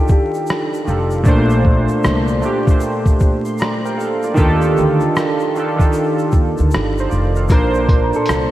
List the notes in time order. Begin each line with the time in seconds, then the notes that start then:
Already playing: D#3 D4 F4 G4 A4
0.08 G4, kick, shaker
0.34 shaker
0.47 cross-stick, shaker
0.74 shaker
0.85 F1 D#3 D4 F4 G4, shaker
0.90 A4
1.11 shaker
1.23 A#1 A#2 A3 D4, kick, shaker
1.29 C5
1.50 shaker
1.65 kick
1.89 shaker
2.04 C2, cross-stick, shaker
2.28 shaker
2.40 A#2 A3 D4, shaker
2.46 G4
2.66 A#2 A3 D4, kick, shaker
2.71 C5
2.81 shaker
3.06 kick, shaker
3.20 kick, shaker
3.45 C6, shaker
3.58 D5 A#5, cross-stick, shaker
3.85 A#4 G5, shaker
3.97 A4 F5, shaker
4.23 F4 D5, shaker
4.34 D#2 D#3 D4 F4 G4, kick, shaker
4.39 A4
4.62 shaker
4.77 D2, shaker
5.00 shaker
5.16 cross-stick, shaker
5.40 shaker
5.55 D#3 D4 F4 G4, shaker
5.60 A4
5.76 D#3 D4 F4 G4, kick
5.80 A4, shaker
5.93 shaker
6.18 shaker
6.32 D#2, kick, shaker
6.58 D2, shaker
6.71 G1, cross-stick, shaker
6.98 D#4 C5, shaker
7.09 F1 F4 D5, shaker
7.35 A4 F5, shaker
7.49 A#1 A#2 A#3 D4 A#4, kick, closed hi-hat, shaker
7.54 C5
7.74 shaker
7.89 kick, closed hi-hat
8.13 A4, shaker
8.26 C2, cross-stick, closed hi-hat, shaker